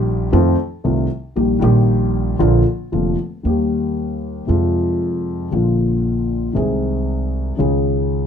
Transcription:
0.00 0.29 A#1 loud
0.00 0.29 A#1 medium
0.00 0.29 A#2 medium
0.00 0.28 D#3 medium
0.00 0.29 G3 medium
0.00 0.29 A#3 medium
0.00 0.30 G4 medium
0.32 0.54 F2 medium
0.32 0.55 F2 medium
0.32 0.54 D#3 medium
0.32 0.54 F3 medium
0.32 0.54 A3 medium
0.32 0.55 C4 medium
0.32 0.55 F4 medium
0.84 1.06 C2 medium
0.84 1.06 C3 medium
0.84 1.06 D#3 soft
0.84 1.06 A3 soft
0.84 1.06 C4 soft
0.84 1.06 F4 medium
1.36 1.58 A#1 medium
1.36 1.58 A#2 medium
1.36 1.58 D#3 soft
1.36 1.58 G3 soft
1.36 1.58 A#3 soft
1.36 1.58 G4 medium
1.60 2.36 A#1 medium
1.60 2.36 A#2 medium
1.60 2.35 D#3 medium
1.60 2.35 G3 medium
1.60 2.36 A#3 medium
1.64 2.37 G4 medium
2.39 2.62 A#1 medium
2.39 2.61 A#2 medium
2.39 2.61 D3 medium
2.39 2.61 F3 medium
2.39 2.62 A#3 medium
2.39 2.62 F4 medium
2.92 3.14 F1 medium
2.92 3.14 F2 medium
2.92 3.14 D3 soft
2.92 3.14 F3 soft
2.92 3.15 A#3 soft
2.92 3.15 F4 medium
3.43 4.44 D#2 medium
3.43 3.45 D#3 soft
3.43 4.44 D#3 medium
3.43 4.44 G3 soft
3.43 4.44 A#3 soft
3.43 4.45 G4 medium
4.47 5.47 F2 medium
4.47 5.46 C3 soft
4.47 5.47 F3 medium
4.47 5.47 G#3 soft
4.51 5.48 F4 medium
5.51 6.51 A#1 medium
5.51 6.51 A#2 medium
5.51 6.50 D3 soft
5.51 6.51 F3 soft
5.51 6.51 A#3 soft
5.51 6.52 F4 medium
6.53 7.54 C2 medium
6.53 7.55 C2 medium
6.53 7.54 C3 medium
6.53 7.53 D#3 medium
6.53 7.54 G#3 soft
6.53 7.54 C4 soft
6.53 7.55 G#4 medium
7.57 8.27 C#2 medium
7.57 8.27 C#3 medium
7.57 8.27 D#3 soft
7.57 8.27 G#3 soft
7.57 8.27 C#4 soft
7.61 8.27 G#4 medium

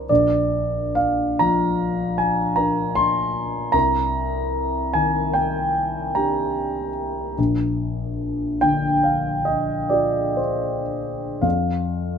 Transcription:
0.00 0.12 D4 soft
0.00 0.12 A#4 soft
0.00 0.12 D#5 soft
0.00 0.12 C6 soft
0.00 0.12 D6 soft
0.00 0.12 A#6 soft
0.09 3.70 A#1 soft
0.09 0.95 D5 medium
0.95 1.38 F5 medium
1.39 3.28 F3 soft
1.39 2.19 A#5 medium
2.18 2.56 G#5 medium
2.56 3.70 D4 soft
2.56 3.70 A#4 soft
2.56 2.95 A#5 medium
2.95 3.74 C6 medium
3.72 7.34 C2 soft
3.72 4.93 A#5 medium
4.94 6.89 D#3 soft
4.94 5.34 G#5 medium
5.34 6.15 G5 medium
6.15 7.34 D4 soft
6.15 7.34 G4 soft
6.15 7.38 A#5 medium
7.38 11.40 A#1 soft
8.61 10.81 D3 soft
8.61 9.04 G5 medium
9.04 9.47 F5 soft
9.45 9.90 D#5 medium
9.90 11.39 F4 soft
9.90 11.40 G#4 soft
9.90 10.38 D5 medium
10.37 11.43 C5 soft
11.42 12.18 F2 soft
11.42 12.18 F5 medium

